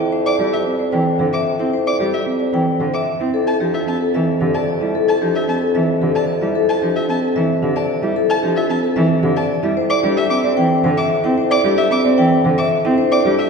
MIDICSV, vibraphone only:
0, 0, Header, 1, 2, 480
1, 0, Start_track
1, 0, Key_signature, -1, "major"
1, 0, Tempo, 535714
1, 113, Time_signature, 3, 2, 24, 8
1, 12093, End_track
2, 0, Start_track
2, 0, Title_t, "Vibraphone"
2, 0, Program_c, 0, 11
2, 0, Note_on_c, 0, 79, 58
2, 112, Note_on_c, 0, 72, 80
2, 150, Note_off_c, 0, 79, 0
2, 269, Note_off_c, 0, 72, 0
2, 349, Note_on_c, 0, 67, 58
2, 508, Note_off_c, 0, 67, 0
2, 710, Note_on_c, 0, 72, 55
2, 828, Note_on_c, 0, 79, 70
2, 868, Note_off_c, 0, 72, 0
2, 987, Note_off_c, 0, 79, 0
2, 1071, Note_on_c, 0, 72, 49
2, 1189, Note_on_c, 0, 76, 71
2, 1229, Note_off_c, 0, 72, 0
2, 1348, Note_off_c, 0, 76, 0
2, 1432, Note_on_c, 0, 79, 58
2, 1554, Note_on_c, 0, 72, 67
2, 1589, Note_off_c, 0, 79, 0
2, 1709, Note_off_c, 0, 72, 0
2, 1792, Note_on_c, 0, 67, 57
2, 1949, Note_off_c, 0, 67, 0
2, 2154, Note_on_c, 0, 72, 54
2, 2274, Note_on_c, 0, 79, 75
2, 2309, Note_off_c, 0, 72, 0
2, 2429, Note_off_c, 0, 79, 0
2, 2514, Note_on_c, 0, 72, 52
2, 2630, Note_on_c, 0, 76, 66
2, 2670, Note_off_c, 0, 72, 0
2, 2788, Note_off_c, 0, 76, 0
2, 2873, Note_on_c, 0, 79, 52
2, 2991, Note_on_c, 0, 69, 64
2, 3029, Note_off_c, 0, 79, 0
2, 3149, Note_off_c, 0, 69, 0
2, 3231, Note_on_c, 0, 67, 58
2, 3388, Note_off_c, 0, 67, 0
2, 3591, Note_on_c, 0, 69, 54
2, 3714, Note_on_c, 0, 76, 64
2, 3748, Note_off_c, 0, 69, 0
2, 3870, Note_off_c, 0, 76, 0
2, 3952, Note_on_c, 0, 69, 46
2, 4073, Note_on_c, 0, 74, 66
2, 4109, Note_off_c, 0, 69, 0
2, 4229, Note_off_c, 0, 74, 0
2, 4316, Note_on_c, 0, 76, 53
2, 4435, Note_on_c, 0, 69, 74
2, 4470, Note_off_c, 0, 76, 0
2, 4590, Note_off_c, 0, 69, 0
2, 4675, Note_on_c, 0, 67, 62
2, 4830, Note_off_c, 0, 67, 0
2, 5032, Note_on_c, 0, 69, 56
2, 5152, Note_on_c, 0, 76, 72
2, 5189, Note_off_c, 0, 69, 0
2, 5309, Note_off_c, 0, 76, 0
2, 5390, Note_on_c, 0, 69, 54
2, 5511, Note_on_c, 0, 74, 74
2, 5548, Note_off_c, 0, 69, 0
2, 5668, Note_off_c, 0, 74, 0
2, 5748, Note_on_c, 0, 76, 60
2, 5870, Note_on_c, 0, 69, 79
2, 5907, Note_off_c, 0, 76, 0
2, 6028, Note_off_c, 0, 69, 0
2, 6108, Note_on_c, 0, 67, 55
2, 6267, Note_off_c, 0, 67, 0
2, 6472, Note_on_c, 0, 69, 61
2, 6594, Note_on_c, 0, 76, 77
2, 6629, Note_off_c, 0, 69, 0
2, 6750, Note_off_c, 0, 76, 0
2, 6835, Note_on_c, 0, 69, 50
2, 6952, Note_on_c, 0, 74, 79
2, 6990, Note_off_c, 0, 69, 0
2, 7109, Note_off_c, 0, 74, 0
2, 7192, Note_on_c, 0, 76, 59
2, 7314, Note_on_c, 0, 69, 78
2, 7349, Note_off_c, 0, 76, 0
2, 7469, Note_off_c, 0, 69, 0
2, 7555, Note_on_c, 0, 67, 62
2, 7710, Note_off_c, 0, 67, 0
2, 7913, Note_on_c, 0, 69, 64
2, 8029, Note_on_c, 0, 76, 72
2, 8069, Note_off_c, 0, 69, 0
2, 8188, Note_off_c, 0, 76, 0
2, 8271, Note_on_c, 0, 69, 58
2, 8393, Note_on_c, 0, 74, 81
2, 8428, Note_off_c, 0, 69, 0
2, 8549, Note_off_c, 0, 74, 0
2, 8632, Note_on_c, 0, 76, 60
2, 8753, Note_on_c, 0, 72, 80
2, 8789, Note_off_c, 0, 76, 0
2, 8909, Note_off_c, 0, 72, 0
2, 8992, Note_on_c, 0, 67, 71
2, 9114, Note_on_c, 0, 76, 81
2, 9149, Note_off_c, 0, 67, 0
2, 9270, Note_off_c, 0, 76, 0
2, 9354, Note_on_c, 0, 72, 66
2, 9471, Note_on_c, 0, 79, 86
2, 9509, Note_off_c, 0, 72, 0
2, 9628, Note_off_c, 0, 79, 0
2, 9711, Note_on_c, 0, 72, 70
2, 9833, Note_on_c, 0, 76, 92
2, 9868, Note_off_c, 0, 72, 0
2, 9989, Note_off_c, 0, 76, 0
2, 10072, Note_on_c, 0, 79, 68
2, 10194, Note_on_c, 0, 72, 81
2, 10229, Note_off_c, 0, 79, 0
2, 10349, Note_off_c, 0, 72, 0
2, 10434, Note_on_c, 0, 67, 73
2, 10552, Note_on_c, 0, 76, 85
2, 10590, Note_off_c, 0, 67, 0
2, 10709, Note_off_c, 0, 76, 0
2, 10790, Note_on_c, 0, 72, 75
2, 10911, Note_on_c, 0, 79, 85
2, 10948, Note_off_c, 0, 72, 0
2, 11069, Note_off_c, 0, 79, 0
2, 11153, Note_on_c, 0, 72, 66
2, 11271, Note_on_c, 0, 76, 88
2, 11309, Note_off_c, 0, 72, 0
2, 11428, Note_off_c, 0, 76, 0
2, 11512, Note_on_c, 0, 79, 72
2, 11629, Note_on_c, 0, 72, 84
2, 11669, Note_off_c, 0, 79, 0
2, 11788, Note_off_c, 0, 72, 0
2, 11872, Note_on_c, 0, 67, 69
2, 11993, Note_on_c, 0, 76, 79
2, 12029, Note_off_c, 0, 67, 0
2, 12093, Note_off_c, 0, 76, 0
2, 12093, End_track
0, 0, End_of_file